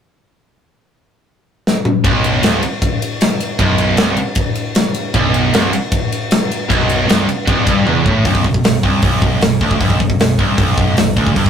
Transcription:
1.67 snare
1.85 mid tom
2.04 picked electric bass B0, distorted electric guitar B1, kick, ride
2.24 ride
2.43 picked electric bass C1, distorted electric guitar C2, snare, ride
2.63 ride
2.82 kick, ride
3.02 ride
3.21 snare, ride
3.40 ride
3.59 picked electric bass B0, distorted electric guitar B1, kick, ride
3.78 ride
3.97 picked electric bass C1, distorted electric guitar C2, snare, ride
4.17 ride
4.35 kick, ride
4.55 ride
4.75 snare, ride
4.94 ride
5.14 picked electric bass B0, distorted electric guitar B1, kick, ride
5.34 ride
5.53 picked electric bass C1, distorted electric guitar C2, snare, ride
5.73 ride
5.92 kick, ride
6.12 ride
6.31 snare, ride
6.52 ride
6.69 picked electric bass B0, distorted electric guitar B1, kick, ride
6.89 ride
7.07 picked electric bass C1, distorted electric guitar C2, snare, ride
7.29 ride
7.47 picked electric bass C1, distorted electric guitar C2, kick, ride
7.67 picked electric bass G1, distorted electric guitar G2, kick, ride
7.86 picked electric bass E1, distorted electric guitar E2, high tom
8.06 picked electric bass A1, distorted electric guitar A2, kick
8.25 picked electric bass B0, distorted electric guitar B1, kick, open hi-hat
8.35 kick
8.44 picked electric bass B0, distorted electric guitar B1, kick
8.54 kick
8.64 picked electric bass B0, distorted electric guitar B1, snare, open hi-hat
8.83 picked electric bass C1, distorted electric guitar C2, kick
9.02 picked electric bass B0, distorted electric guitar B1, kick, open hi-hat
9.22 kick
9.41 picked electric bass B0, distorted electric guitar B1, snare, open hi-hat
9.61 picked electric bass D1, distorted electric guitar D2, kick
9.71 kick
9.80 picked electric bass B0, distorted electric guitar B1, kick, open hi-hat
9.90 kick
10.00 picked electric bass B0, distorted electric guitar B1, kick
10.10 kick
10.19 picked electric bass B0, distorted electric guitar B1, snare, open hi-hat
10.39 picked electric bass C1, distorted electric guitar C2, kick
10.58 picked electric bass B0, distorted electric guitar B1, kick, open hi-hat
10.78 kick
10.97 picked electric bass B0, distorted electric guitar B1, snare, open hi-hat
11.16 picked electric bass D1, distorted electric guitar D2, kick
11.27 kick
11.36 picked electric bass G1, distorted electric guitar G2, kick, open hi-hat
11.46 kick

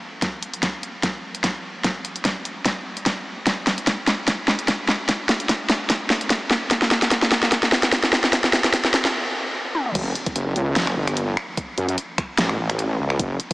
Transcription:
0.22 kick, snare, closed hi-hat
0.43 closed hi-hat
0.54 closed hi-hat
0.63 kick, snare, closed hi-hat
0.83 closed hi-hat
1.03 kick, snare, closed hi-hat
1.35 closed hi-hat
1.44 kick, snare, closed hi-hat
1.84 kick, snare, closed hi-hat
2.05 closed hi-hat
2.16 closed hi-hat
2.25 kick, snare, closed hi-hat
2.45 closed hi-hat
2.65 kick, snare, closed hi-hat
2.97 closed hi-hat
3.06 kick, snare, closed hi-hat
3.47 kick, snare, closed hi-hat
3.67 snare, closed hi-hat
3.78 closed hi-hat
3.87 kick, snare, closed hi-hat
4.07 snare, closed hi-hat
4.28 kick, snare, closed hi-hat
4.48 snare
4.59 closed hi-hat
4.68 kick, snare, closed hi-hat
4.88 snare
5.09 kick, snare, closed hi-hat
5.29 snare, closed hi-hat
5.40 closed hi-hat
5.49 kick, snare, closed hi-hat
5.69 snare, closed hi-hat
5.90 kick, snare, closed hi-hat
6.10 snare
6.21 closed hi-hat
6.30 kick, snare, closed hi-hat
6.51 snare
6.71 kick, snare, closed hi-hat
6.82 snare
6.91 snare, closed hi-hat
7.02 snare, closed hi-hat
7.11 kick, snare, closed hi-hat
7.22 snare
7.32 snare, closed hi-hat
7.43 snare
7.52 kick, snare, closed hi-hat
7.63 snare
7.72 snare
7.83 snare, closed hi-hat
7.92 kick, snare, closed hi-hat
8.03 snare
8.13 snare
8.24 snare
8.33 kick, snare, closed hi-hat
8.44 snare
8.53 snare, closed hi-hat
8.64 snare, closed hi-hat
8.73 kick, snare, closed hi-hat
8.85 snare
8.94 snare, closed hi-hat
9.05 snare
9.75 high tom
9.86 mid tom
9.95 wobble bass F#1, kick, closed hi-hat, crash
10.15 closed hi-hat
10.26 kick, closed hi-hat
10.36 wobble bass F#1, closed hi-hat
10.56 wobble bass C#2, closed hi-hat
10.76 wobble bass F#1, snare, closed hi-hat
10.87 finger snap
10.97 wobble bass G1
11.07 finger snap, closed hi-hat
11.17 closed hi-hat
11.37 finger snap
11.57 kick, closed hi-hat
11.78 wobble bass F#2, closed hi-hat
11.89 closed hi-hat
11.98 closed hi-hat
12.18 finger snap, kick, closed hi-hat
12.38 wobble bass A1, snare, closed hi-hat
12.49 finger snap
12.59 wobble bass A1
12.70 finger snap, closed hi-hat
12.79 closed hi-hat
12.99 wobble bass C#2
13.10 finger snap
13.19 wobble bass F#1, kick, closed hi-hat
13.40 closed hi-hat

